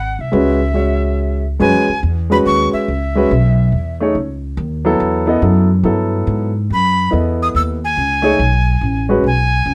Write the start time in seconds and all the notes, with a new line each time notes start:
Already playing: G#1 F#5
0.19 C2 E5
0.32 C#2 G#3 C#4 F#4 B4
0.74 G#3 C#4 F#4 C#5
1.60 F#2 G#3 C#4 F#4 B4 G#5
1.75 E2
1.89 C#2
2.03 E2
2.30 G#3 C#4 F#4 B4 B5
2.46 D#2 C#6
2.73 E5, muted upright bass stroke
2.88 C#2
3.15 G#3 C#4 F#4 B4
3.31 B1
3.72 E2
4.00 A3 D#4 G#4 C#5
4.15 C#2
4.57 D#2
4.85 F#3 B3 E4 A4
5.00 E2
5.27 B3 E4 A4 D#5
5.41 F#2 F#3 B3 E4 A4
5.83 G2 F#3 B3 E4 A4
6.27 G#2
6.70 F#2 B5
7.11 E2 B3 E4 A4 D#5
7.42 D#6
7.55 D#2 E6
7.84 G#5
7.97 C#2
8.22 A3 D#4 G#4 C#5
8.39 B1
8.81 A1
9.09 G#3 C#4 F#4 B4
9.24 B1 G#5
9.66 C#2